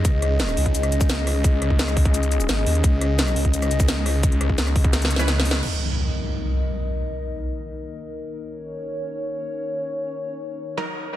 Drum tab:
CC |------------------------------------------------|------------------------------------------------|------------------------------------------------|------------------------------------------------|
HH |x-----x-----x-----o--x--x--x--x-----x-----o-----|x-----x-----x-----o--x--x--x--x-----x-----o--x--|x-----x-----x-----o--x--x--x--x-----x-----o-----|x--x--x-----x-----o--x--x--x--x-----x-----o--x--|
SH |x-----------x--x--------x--x--x--x--x-----------|x-----------x--x--------x--x--x--x--x-----------|x-----------x--x--------x--x--x--x--x-----------|x-----------x--x--------x--x--x--x--x-----x-----|
SD |------r-----o--r-----------r--------o-----r-----|------r-----o--r--------------------o-----------|------r-----o--r-----------r--------o-----r-----|------r-----o--r--------o---o---o---o---o---o---|
BD |o--------------------o-----------o--------------|o--------o--------o--o--------------------------|o--------------------o-----------o--------------|o--------o--------o--o--------------------------|

CC |x-----------------------------------------------|------------------------------------------------|------------------------------------------------|------------------------------------------------|
HH |------------------------------------------------|------------------------------------------------|------------------------------------------------|------------------------------------------------|
SH |------------------------------------------------|------------------------------------------------|------------------------------------------------|------------------------------------------------|
SD |------------------------------------------------|------------------------------------------------|------------------------------------------------|------------------------------------------------|
BD |------------------------------------------------|------------------------------------------------|------------------------------------------------|------------------------------------------------|